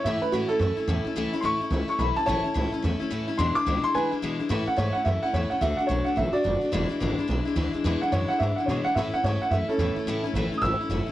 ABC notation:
X:1
M:4/4
L:1/8
Q:"Swing" 1/4=216
K:A
V:1 name="Upright piano"
e B F A4- A- | A z [=c'^c']3 c' b a | [ca]4 z4 | =c' d'2 c' [Bg] z3 |
z f c f e f c f | e f c f e [Fd]3- | [Fd]3 z4 z | z f c f e f c f |
e f c f e [CA]3- | [CA]3 z [^d'e']4 |]
V:2 name="Steel-string acoustic guitar"
[A,,E,A,CE] [A,CE] [A,,E,A,CE] [A,CE] [E,A,CE] [A,CE] [A,,E,A,CE] [A,CE] | [A,,E,A,CE] [A,CE] [A,,E,A,CE] [A,CE] [E,A,CE] [A,CE] [A,,E,A,CE] [A,CE] | [A,,E,A,CE] [A,CE] [A,,E,A,CE] [A,CE] [E,A,CE] [A,CE] [A,,E,A,CE] [A,CE] | [E,,B,,E,G,DE] [E,G,DE] [E,,B,,E,G,DE] [E,G,DE] [E,G,DE] [E,G,DE] [E,,B,,E,G,DE] [E,G,DE] |
[A,,E,A,CE] [A,CE] [A,,E,A,CE] [A,CE] [E,A,CE] [A,CE] [A,,E,A,CE] [A,CE] | [D,A,DF] [A,DF] [D,A,DF] [A,DF] [D,A,DF] [A,DF] [D,A,DF] [A,DF] | [E,,B,,E,G,DE] [E,G,DE] [E,,B,,E,G,DE] [E,G,DE] [E,G,DE] [E,G,DE] [E,,B,,E,G,DE] [E,G,DE] | [E,,B,,E,G,DE] [E,G,DE] [E,,B,,E,G,DE] [E,G,DE] [E,G,DE] [E,G,DE] [E,,B,,E,G,DE] [E,G,DE] |
[A,,E,A,CE] [A,CE] [A,,E,A,CE] [A,CE] [E,A,CE] [A,CE] [A,,E,A,CE] [A,CE] | [A,,E,A,CE] [A,CE] [A,,E,A,CE] [A,CE] [E,A,CE] [A,CE] [A,,E,A,CE] [CE] |]
V:3 name="Upright bass" clef=bass
A,, z G,, z F,, z E,, z | C,, z D,, z C,, z B,,, z | A,,, z C,, z E,, z D,, z | E,, z C,, z D,, z E,, z |
A,, z G,, z F,, z E,, z | D,, z B,,, z A,,, z F,,, z | E,,, z G,,, z B,,, z D,, z | E,, z F,, z G,, z B,, z |
A,, z G,, z F,, z E,, z | C,, z A,,, z G,,, z F,,, z |]